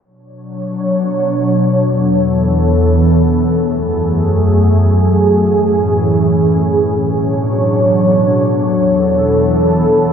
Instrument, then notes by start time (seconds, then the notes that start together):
ambient pad
0.04 B2 F#3 D4 C#5
1.73 E2 E3 B3 A4
3.42 F#2 F#3 A3 G#4
5.11 A2 E3 C#4
6.80 B2 F#3 D4 C#5
8.49 E2 E3 B3 A4